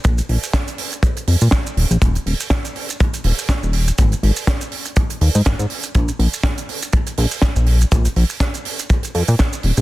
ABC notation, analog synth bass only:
X:1
M:4/4
L:1/16
Q:"Swing 16ths" 1/4=122
K:Ebdor
V:1 name="Analog synth bass" clef=bass
B,,, z B,,, z6 z F,, B,, z2 E,,, B,,, | E,,, z E,,, z6 z E,,, z2 E,,,2 z | A,,, z A,,, z6 z E,, A,, A,,, A,, z2 | B,,, z B,,, z6 z B,,, z2 B,,,2 z |
B,,, z B,,, z6 z F,, B,, z2 E,,, B,,, |]